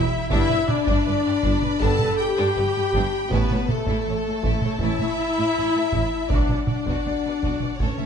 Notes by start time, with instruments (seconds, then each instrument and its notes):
Already playing: violin section E4 E5 G5, french horn section E4, viola section E4
0.30 double bass section G1, cello section G2, trombone section G3 B3, violin section D4 E5 B5, viola section E4, french horn section E4, taiko
0.49 cello section G2, violin section B4, taiko mid
0.69 viola section D4, french horn section D4, violin section D5, taiko mid
0.87 cello section G2, violin section D4, taiko
1.06 double bass section G1, cello section G2, violin section B4
1.26 cello section G2, violin section G4
1.43 double bass section G1, cello section G2, violin section D4, taiko
1.62 cello section G2, violin section B4, taiko mid
1.80 double bass section G1, cello section G2, trombone section G3 B3, violin section D4 A5, viola section A4, french horn section A4, taiko
1.99 cello section G2, violin section B4, taiko mid
2.19 viola section G4, french horn section G4, violin section G5
2.36 cello section G2, violin section D4
2.56 double bass section G1, cello section G2, violin section B4
2.76 cello section G2, violin section G4
2.93 double bass section G1, cello section G2, violin section D4, taiko
3.29 double bass section A1, cello section A2, trombone section E3 C#4, french horn section B3, viola section B3, violin section E4 B4 A5, taiko
3.50 cello section A2, violin section C#5, taiko mid
3.69 viola section A3, french horn section A3, violin section A4, taiko mid
3.86 cello section A2, violin section E4, taiko
4.07 double bass section A1, cello section A2, violin section C#5
4.26 cello section A2, violin section A4
4.43 double bass section A1, cello section A2, violin section E4, taiko
4.62 cello section A2, violin section C#5, taiko mid
4.79 double bass section A1, trombone section E3 C#4, french horn section E4, viola section E4, violin section E4 E5, taiko
4.83 cello section A2
4.99 cello section A2, violin section C#5, taiko mid
5.38 cello section A2, violin section E4
5.56 double bass section A1, cello section A2, violin section C#5
5.75 cello section A2, violin section A4
5.92 double bass section A1, cello section A2, violin section E4, taiko
6.30 double bass section B1, cello section B2, trombone section F#3 B3, french horn section D4, viola section D4, violin section F#4 D5 F#5, taiko
6.48 cello section B2, violin section D5, taiko mid
6.67 french horn section D4, viola section D4, violin section D5, taiko mid
6.86 cello section B2, violin section F#4, taiko
7.06 double bass section B1, cello section B2, violin section D5
7.25 cello section B2, violin section B4
7.43 double bass section B1, cello section B2, violin section F#4, taiko
7.61 cello section B2, violin section D5, taiko mid
7.79 double bass section A1, cello section A2, trombone section E3 A3, viola section C#4, french horn section C#4, violin section A4 C#5 A5, taiko
7.98 cello section A2, violin section E5, taiko mid